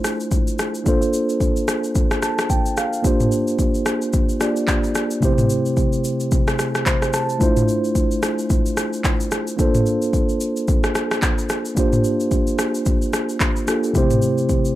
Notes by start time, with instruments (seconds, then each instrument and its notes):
Already playing: tine electric piano A3 D4 E4 F4 C5
0.04 cross-stick, shaker
0.20 shaker
0.31 kick, shaker
0.47 shaker
0.59 cross-stick, shaker
0.75 shaker
0.84 tine electric piano A#3 D4 F4 A4, kick, shaker
0.88 tine electric piano C5
1.02 shaker
1.13 shaker
1.29 shaker
1.40 kick, shaker
1.56 shaker
1.68 cross-stick, shaker
1.84 shaker
1.95 kick, shaker
2.11 cross-stick, shaker
2.22 tine electric piano A5, cross-stick, shaker
2.39 cross-stick, shaker
2.50 tine electric piano G5, kick, shaker
2.66 shaker
2.77 tine electric piano F5, cross-stick, shaker
2.93 shaker
3.02 tine electric piano A#3 D4 F4 G4, kick, shaker
3.07 tine electric piano C5
3.20 mid tom, shaker
3.32 shaker
3.48 shaker
3.59 kick, shaker
3.74 shaker
3.86 cross-stick, shaker
4.02 shaker
4.13 kick, shaker
4.29 shaker
4.40 tine electric piano A#3 D4 F4 G4 D5, cross-stick, shaker
4.56 shaker
4.68 kick, clap, shaker
4.84 shaker
4.95 cross-stick, shaker
5.11 shaker
5.21 tine electric piano C3 A3 C4 E4 G4, kick, shaker
5.25 tine electric piano C5
5.38 mid tom, shaker
5.50 shaker
5.66 shaker
5.77 kick, shaker
5.93 shaker
6.04 shaker
6.20 shaker
6.31 kick, shaker
6.48 cross-stick, shaker
6.59 cross-stick, shaker
6.75 cross-stick, shaker
6.86 tine electric piano C5, kick, clap, shaker
7.02 cross-stick, shaker
7.13 tine electric piano A5, cross-stick, shaker
7.29 shaker
7.39 tine electric piano A3 D4 E4 F4, kick, shaker
7.43 tine electric piano C5
7.57 mid tom, shaker
7.68 shaker
7.84 shaker
7.95 kick, shaker
8.11 shaker
8.23 cross-stick, shaker
8.39 shaker
8.50 kick, shaker
8.66 shaker
8.77 cross-stick, shaker
8.93 shaker
9.04 kick, clap, shaker
9.20 shaker
9.31 cross-stick, shaker
9.47 shaker
9.57 tine electric piano A#3 D4 F4 A4, kick, shaker
9.61 tine electric piano C5
9.75 mid tom, shaker
9.86 shaker
10.02 shaker
10.13 kick, shaker
10.29 shaker
10.41 shaker
10.57 shaker
10.68 kick, shaker
10.84 cross-stick, shaker
10.95 cross-stick, shaker
11.11 cross-stick, shaker
11.22 kick, clap, shaker
11.38 shaker
11.49 cross-stick, shaker
11.65 shaker
11.75 tine electric piano A#3 D4 F4 G4, kick, shaker
11.80 tine electric piano C5
11.93 mid tom, shaker
12.04 shaker
12.20 shaker
12.31 kick, shaker
12.47 shaker
12.59 cross-stick, shaker
12.75 shaker
12.86 kick, shaker
13.02 shaker
13.13 cross-stick, shaker
13.29 shaker
13.40 kick, clap, shaker
13.56 shaker
13.67 tine electric piano A#3 D4 F4 G4 A4, cross-stick, shaker
13.83 shaker
13.93 tine electric piano C3 A3 C4 E4 G4, kick, shaker
13.98 tine electric piano C5
14.11 mid tom, shaker
14.22 shaker
14.38 shaker
14.49 kick, shaker
14.65 shaker